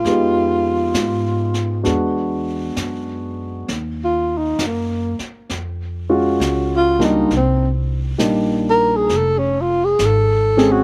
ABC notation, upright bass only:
X:1
M:4/4
L:1/8
Q:"Swing" 1/4=66
K:Ebdor
V:1 name="Upright bass" clef=bass
F,,2 A,,2 =E,,2 ^F,,2 | E,,2 G,, z F,,2 D,,2 | C,,2 B,,,2 F,,,2 A,,,2 |]